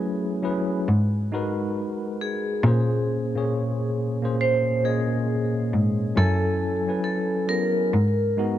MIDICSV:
0, 0, Header, 1, 4, 480
1, 0, Start_track
1, 0, Tempo, 882353
1, 1430, Time_signature, 4, 2, 24, 8
1, 4670, End_track
2, 0, Start_track
2, 0, Title_t, "Vibraphone"
2, 0, Program_c, 0, 11
2, 1204, Note_on_c, 0, 68, 83
2, 2398, Note_on_c, 0, 72, 102
2, 2433, Note_off_c, 0, 68, 0
2, 2618, Note_off_c, 0, 72, 0
2, 2639, Note_on_c, 0, 68, 85
2, 3093, Note_off_c, 0, 68, 0
2, 3359, Note_on_c, 0, 69, 95
2, 3812, Note_off_c, 0, 69, 0
2, 3830, Note_on_c, 0, 69, 85
2, 4074, Note_on_c, 0, 70, 100
2, 4077, Note_off_c, 0, 69, 0
2, 4670, Note_off_c, 0, 70, 0
2, 4670, End_track
3, 0, Start_track
3, 0, Title_t, "Tine electric piano"
3, 0, Program_c, 1, 4
3, 0, Control_c, 1, 64, 127
3, 0, Note_on_c, 1, 54, 56
3, 0, Note_on_c, 1, 57, 97
3, 0, Note_on_c, 1, 61, 58
3, 0, Note_on_c, 1, 64, 55
3, 0, Note_on_c, 1, 68, 58
3, 0, Note_on_c, 1, 71, 67
3, 183, Note_off_c, 1, 54, 0
3, 186, Note_off_c, 1, 61, 0
3, 187, Note_off_c, 1, 64, 0
3, 190, Note_off_c, 1, 68, 0
3, 192, Note_off_c, 1, 71, 0
3, 230, Note_on_c, 1, 54, 87
3, 235, Note_on_c, 1, 61, 79
3, 238, Note_on_c, 1, 64, 69
3, 241, Note_on_c, 1, 68, 76
3, 245, Note_on_c, 1, 71, 92
3, 470, Note_off_c, 1, 54, 0
3, 472, Note_off_c, 1, 61, 0
3, 474, Note_off_c, 1, 64, 0
3, 475, Note_off_c, 1, 68, 0
3, 477, Note_off_c, 1, 71, 0
3, 478, Note_off_c, 1, 57, 0
3, 478, Control_c, 1, 64, 0
3, 581, Control_c, 1, 64, 127
3, 718, Note_on_c, 1, 56, 85
3, 721, Note_on_c, 1, 63, 86
3, 727, Note_on_c, 1, 66, 85
3, 730, Note_on_c, 1, 70, 92
3, 733, Note_on_c, 1, 71, 93
3, 1335, Note_off_c, 1, 56, 0
3, 1337, Note_off_c, 1, 63, 0
3, 1340, Note_off_c, 1, 66, 0
3, 1341, Note_off_c, 1, 70, 0
3, 1343, Note_off_c, 1, 71, 0
3, 1436, Control_c, 1, 64, 0
3, 1436, Note_on_c, 1, 46, 93
3, 1440, Note_on_c, 1, 58, 80
3, 1443, Note_on_c, 1, 61, 85
3, 1448, Note_on_c, 1, 68, 88
3, 1449, Note_on_c, 1, 72, 102
3, 1532, Control_c, 1, 64, 127
3, 1744, Note_off_c, 1, 46, 0
3, 1746, Note_off_c, 1, 58, 0
3, 1747, Note_off_c, 1, 61, 0
3, 1749, Note_off_c, 1, 68, 0
3, 1750, Note_off_c, 1, 72, 0
3, 1821, Note_on_c, 1, 46, 76
3, 1825, Note_on_c, 1, 58, 69
3, 1831, Note_on_c, 1, 61, 59
3, 1836, Note_on_c, 1, 68, 74
3, 1838, Note_on_c, 1, 73, 81
3, 2197, Note_off_c, 1, 46, 0
3, 2199, Note_off_c, 1, 58, 0
3, 2202, Note_off_c, 1, 61, 0
3, 2204, Note_off_c, 1, 68, 0
3, 2205, Note_off_c, 1, 73, 0
3, 2293, Note_on_c, 1, 46, 70
3, 2296, Note_on_c, 1, 58, 73
3, 2303, Note_on_c, 1, 61, 63
3, 2306, Note_on_c, 1, 68, 66
3, 2311, Note_on_c, 1, 72, 82
3, 2579, Note_off_c, 1, 46, 0
3, 2581, Note_off_c, 1, 58, 0
3, 2584, Note_off_c, 1, 61, 0
3, 2586, Note_off_c, 1, 68, 0
3, 2588, Note_off_c, 1, 72, 0
3, 2624, Note_on_c, 1, 46, 73
3, 2630, Note_on_c, 1, 58, 69
3, 2631, Note_on_c, 1, 61, 77
3, 2636, Note_on_c, 1, 68, 65
3, 2640, Note_on_c, 1, 75, 89
3, 3248, Note_off_c, 1, 46, 0
3, 3251, Note_off_c, 1, 58, 0
3, 3252, Note_off_c, 1, 61, 0
3, 3254, Note_off_c, 1, 68, 0
3, 3256, Note_off_c, 1, 75, 0
3, 3346, Note_on_c, 1, 54, 94
3, 3349, Note_on_c, 1, 61, 91
3, 3355, Note_on_c, 1, 64, 80
3, 3357, Control_c, 1, 64, 0
3, 3359, Note_on_c, 1, 80, 91
3, 3361, Note_on_c, 1, 69, 104
3, 3463, Control_c, 1, 64, 127
3, 3659, Note_off_c, 1, 54, 0
3, 3660, Note_off_c, 1, 61, 0
3, 3663, Note_off_c, 1, 64, 0
3, 3665, Note_off_c, 1, 80, 0
3, 3666, Note_off_c, 1, 69, 0
3, 3735, Note_on_c, 1, 54, 56
3, 3739, Note_on_c, 1, 61, 56
3, 3742, Note_on_c, 1, 64, 49
3, 3747, Note_on_c, 1, 80, 60
3, 3751, Note_on_c, 1, 71, 74
3, 4020, Note_off_c, 1, 54, 0
3, 4022, Note_off_c, 1, 61, 0
3, 4024, Note_off_c, 1, 64, 0
3, 4026, Note_off_c, 1, 80, 0
3, 4028, Note_off_c, 1, 71, 0
3, 4064, Note_on_c, 1, 54, 71
3, 4070, Note_on_c, 1, 61, 65
3, 4073, Note_on_c, 1, 64, 63
3, 4078, Note_on_c, 1, 68, 66
3, 4080, Note_on_c, 1, 59, 72
3, 4307, Note_off_c, 1, 54, 0
3, 4310, Note_off_c, 1, 61, 0
3, 4311, Note_off_c, 1, 64, 0
3, 4314, Note_off_c, 1, 68, 0
3, 4315, Note_off_c, 1, 59, 0
3, 4317, Control_c, 1, 64, 0
3, 4425, Control_c, 1, 64, 127
3, 4554, Note_on_c, 1, 56, 84
3, 4559, Note_on_c, 1, 63, 83
3, 4563, Note_on_c, 1, 66, 80
3, 4565, Note_on_c, 1, 70, 71
3, 4570, Note_on_c, 1, 59, 104
3, 4670, Note_off_c, 1, 56, 0
3, 4670, Note_off_c, 1, 59, 0
3, 4670, Note_off_c, 1, 63, 0
3, 4670, Note_off_c, 1, 66, 0
3, 4670, Note_off_c, 1, 70, 0
3, 4670, End_track
4, 0, Start_track
4, 0, Title_t, "Cello"
4, 0, Program_c, 2, 42
4, 479, Note_on_c, 2, 44, 94
4, 932, Note_off_c, 2, 44, 0
4, 1433, Note_on_c, 2, 46, 108
4, 1799, Note_off_c, 2, 46, 0
4, 3118, Note_on_c, 2, 44, 86
4, 3254, Note_off_c, 2, 44, 0
4, 3357, Note_on_c, 2, 42, 108
4, 3721, Note_off_c, 2, 42, 0
4, 4315, Note_on_c, 2, 44, 96
4, 4670, Note_off_c, 2, 44, 0
4, 4670, End_track
0, 0, End_of_file